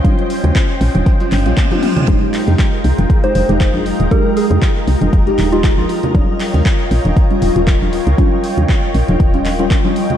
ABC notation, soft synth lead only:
X:1
M:4/4
L:1/16
Q:"Swing 16ths" 1/4=118
K:Ebmix
V:1 name="Soft synth lead"
z16 | z8 z c c2 z4 | B2 A A z6 z F2 F F z | z16 |
z16 |]